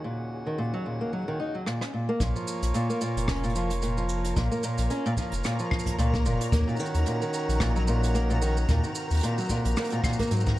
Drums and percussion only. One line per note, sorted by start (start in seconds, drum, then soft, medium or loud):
1.66 cross-stick soft
1.81 cross-stick medium
2.20 kick loud
2.20 closed hi-hat medium
2.20 shaker medium
2.36 shaker soft
2.48 shaker medium
2.63 closed hi-hat medium
2.63 shaker soft
2.74 closed hi-hat medium
2.74 shaker medium
2.90 shaker soft
3.01 shaker medium
3.17 closed hi-hat medium
3.17 shaker soft
3.28 kick loud
3.28 cross-stick medium
3.28 closed hi-hat medium
3.28 shaker medium
3.36 closed hi-hat soft
3.44 closed hi-hat soft
3.44 shaker soft
3.50 closed hi-hat soft
3.56 shaker medium
3.70 closed hi-hat medium
3.70 shaker medium
3.82 closed hi-hat soft
3.82 shaker medium
3.98 shaker soft
4.09 shaker medium
4.25 closed hi-hat medium
4.25 shaker medium
4.37 kick loud
4.37 closed hi-hat medium
4.37 shaker medium
4.52 shaker soft
4.63 shaker medium
4.78 closed hi-hat medium
4.78 shaker soft
4.90 closed hi-hat medium
4.90 shaker medium
5.06 shaker soft
5.17 kick medium
5.17 shaker medium
5.32 closed hi-hat medium
5.32 shaker medium
5.44 cross-stick medium
5.44 closed hi-hat medium
5.44 shaker medium
5.59 shaker soft
5.71 kick loud
5.71 claves medium
5.79 shaker medium
5.86 kick medium
5.86 closed hi-hat medium
5.86 shaker soft
5.99 closed hi-hat medium
5.99 shaker medium
6.14 kick loud
6.14 shaker soft
6.26 shaker medium
6.41 closed hi-hat medium
6.41 shaker soft
6.52 kick loud
6.52 closed hi-hat medium
6.52 shaker medium
6.69 shaker soft
6.77 shaker soft
6.79 shaker medium
6.86 shaker soft
6.95 closed hi-hat medium
6.95 shaker medium
7.06 closed hi-hat medium
7.06 shaker medium
7.22 shaker soft
7.34 shaker medium
7.49 closed hi-hat medium
7.49 shaker medium
7.60 kick loud
7.60 cross-stick medium
7.60 closed hi-hat medium
7.60 shaker medium
7.76 shaker soft
7.88 shaker medium
8.04 closed hi-hat medium
8.04 shaker medium
8.14 closed hi-hat soft
8.14 shaker medium
8.30 shaker soft
8.42 shaker medium
8.57 shaker medium
8.69 kick loud
8.69 closed hi-hat medium
8.69 shaker medium
8.84 shaker soft
8.95 shaker medium
9.11 closed hi-hat soft
9.11 shaker medium
9.13 closed hi-hat soft
9.17 closed hi-hat medium
9.19 closed hi-hat medium
9.21 closed hi-hat medium
9.23 closed hi-hat medium
9.23 shaker medium
9.38 shaker soft
9.40 shaker soft
9.44 shaker soft
9.46 shaker soft
9.48 shaker soft
9.50 kick medium
9.50 shaker medium
9.65 closed hi-hat medium
9.65 shaker soft
9.71 shaker soft
9.76 cross-stick medium
9.76 closed hi-hat soft
9.76 shaker medium
9.76 shaker soft
9.80 closed hi-hat soft
9.82 closed hi-hat soft
9.82 shaker soft
9.85 closed hi-hat soft
9.90 closed hi-hat medium
9.90 shaker soft
10.04 kick loud
10.04 claves medium
10.04 shaker medium
10.13 shaker medium
10.19 kick medium
10.19 closed hi-hat medium
10.19 shaker soft
10.22 shaker medium
10.27 closed hi-hat medium
10.27 shaker soft
10.31 shaker medium
10.36 shaker soft
10.40 shaker soft
10.46 kick loud
10.46 shaker soft